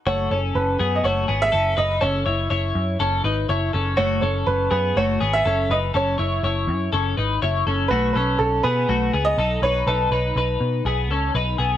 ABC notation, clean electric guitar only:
X:1
M:4/4
L:1/8
Q:1/4=122
K:F#dor
V:1 name="Clean electric guitar"
[A,F] [CA]2 [B,G] [A,F] [B,G] [CA] [DB] | [CA] [Ec] [Ec]2 [CA] [DB] [Ec] [CA] | [A,F] [CA]2 [B,G] [A,F] [B,G] [CA] [DB] | [CA] [Ec] [Ec]2 [CA] [DB] [Ec] [CA] |
[A,F] [CA]2 [B,G] [A,F] [B,G] [DA] [DB] | [DA] [DB] [DB]2 [B,G] [CA] [DB] [B,G] |]